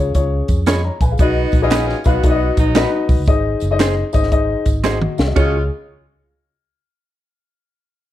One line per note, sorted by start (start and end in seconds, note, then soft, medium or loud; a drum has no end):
0.00 0.11 C#2 loud
0.00 0.10 C#4 medium
0.00 0.10 F4 medium
0.00 0.10 G#4 medium
0.00 0.10 C#5 loud
0.14 0.41 C#2 loud
0.14 0.58 C#4 medium
0.14 0.59 F4 medium
0.14 0.59 G#4 medium
0.14 0.58 C#5 loud
0.14 kick medium
0.14 closed hi-hat medium
0.14 tambourine soft
0.48 0.89 F2 loud
0.48 kick medium
0.48 closed hi-hat medium
0.48 tambourine medium
0.66 0.80 C#4 medium
0.66 0.80 F4 medium
0.66 0.81 G#4 loud
0.66 0.81 C#5 medium
0.66 0.83 D#5 medium
0.66 0.83 B5 medium
0.66 snare loud
0.66 clap medium
0.66 closed hi-hat medium
0.66 tambourine medium
0.85 1.01 C#5 medium
0.85 1.00 A#5 medium
1.01 1.15 A#1 medium
1.01 1.10 B4 medium
1.01 1.10 G#5 medium
1.01 kick medium
1.01 closed hi-hat medium
1.01 tambourine soft
1.11 1.36 G#4 medium
1.11 1.35 F5 medium
1.18 1.45 B1 loud
1.18 1.60 B3 loud
1.18 1.60 D#4 loud
1.18 1.56 D#4 loud
1.18 1.60 F#4 loud
1.18 1.56 F#4 medium
1.18 1.56 B4 medium
1.18 1.57 D#5 loud
1.18 kick loud
1.18 closed hi-hat loud
1.18 tambourine medium
1.52 1.93 A#1 medium
1.52 kick loud
1.52 closed hi-hat medium
1.52 tambourine soft
1.62 1.69 C#4 medium
1.62 1.93 D#4 medium
1.62 1.69 F4 medium
1.62 1.93 F#4 medium
1.62 1.69 G#4 loud
1.62 1.93 B4 medium
1.62 1.94 D#5 loud
1.71 1.85 B3 medium
1.71 1.99 C#4 loud
1.71 1.85 D#4 medium
1.71 1.99 F4 loud
1.71 1.85 F#4 medium
1.71 1.99 G#4 loud
1.71 1.85 B4 medium
1.71 snare loud
1.71 clap loud
1.71 closed hi-hat loud
1.71 tambourine loud
1.89 snare soft
2.04 2.20 B1 medium
2.04 2.55 B3 loud
2.04 2.19 D#4 medium
2.04 2.55 D#4 medium
2.04 2.55 F#4 loud
2.04 2.19 F#4 medium
2.04 2.19 B4 medium
2.04 2.20 F5 loud
2.04 kick loud
2.04 closed hi-hat medium
2.04 tambourine medium
2.23 2.50 B1 loud
2.23 2.67 D#4 medium
2.23 2.67 F#4 medium
2.23 2.68 B4 medium
2.23 2.32 D5 medium
2.23 kick medium
2.23 closed hi-hat loud
2.30 2.71 D#5 loud
2.57 2.85 A#1 medium
2.57 3.07 F#3 medium
2.57 3.07 B3 medium
2.57 3.07 D#4 loud
2.57 kick medium
2.57 closed hi-hat medium
2.57 tambourine medium
2.75 2.89 B3 medium
2.75 3.19 D#4 loud
2.75 2.89 D#4 loud
2.75 3.19 F#4 medium
2.75 2.89 F#4 medium
2.75 3.19 B4 medium
2.75 2.90 B4 loud
2.75 3.19 D#5 loud
2.75 snare loud
2.75 clap medium
2.75 closed hi-hat medium
2.75 tambourine medium
3.09 3.16 B1 loud
3.09 kick loud
3.09 open hi-hat medium
3.09 tambourine medium
3.19 3.26 C#2 medium
3.26 3.54 G#1 medium
3.26 3.64 D#4 medium
3.26 3.65 G#4 medium
3.26 3.65 C5 medium
3.26 3.65 D#5 loud
3.26 kick loud
3.26 closed hi-hat loud
3.26 tambourine soft
3.60 4.02 F#1 medium
3.60 closed hi-hat medium
3.60 tambourine soft
3.71 4.02 D#4 medium
3.71 4.02 G#4 medium
3.71 4.02 C5 medium
3.71 4.02 D#5 loud
3.80 3.93 C4 medium
3.80 3.93 D#4 medium
3.80 3.94 G#4 loud
3.80 3.94 C5 medium
3.80 snare loud
3.80 clap loud
3.80 closed hi-hat loud
3.80 tambourine loud
4.13 4.54 G#1 medium
4.13 4.28 D#4 medium
4.13 4.28 G#4 medium
4.13 4.28 C5 medium
4.13 4.28 D#5 loud
4.13 kick medium
4.13 closed hi-hat medium
4.13 tambourine medium
4.23 snare soft
4.32 4.76 D#4 medium
4.32 4.66 G#4 medium
4.32 4.66 C5 medium
4.32 4.66 D#5 loud
4.32 kick medium
4.32 closed hi-hat medium
4.66 5.06 G#1 loud
4.66 kick medium
4.66 closed hi-hat medium
4.66 tambourine medium
4.84 4.98 C4 medium
4.84 4.98 D#4 medium
4.84 5.17 F#4 medium
4.84 4.98 G#4 medium
4.84 4.98 C5 medium
4.84 5.17 D#5 medium
4.84 snare medium
4.84 clap medium
4.84 tambourine loud
5.02 mid tom medium
5.18 5.33 C2 medium
5.18 5.27 G#4 medium
5.18 5.27 F5 medium
5.18 snare loud
5.18 tambourine medium
5.27 5.52 F#4 medium
5.27 5.52 D#5 medium
5.36 5.68 C#2 loud
5.36 5.61 C#3 medium
5.36 5.61 G#3 medium
5.36 5.57 C#4 medium
5.36 5.68 F4 medium
5.36 5.57 F4 medium
5.36 5.61 F4 loud
5.36 5.68 G#4 medium
5.36 5.57 G#4 medium
5.36 5.68 C#5 medium
5.36 5.58 C#5 medium
5.36 kick loud
5.36 ride bell medium
5.36 tambourine medium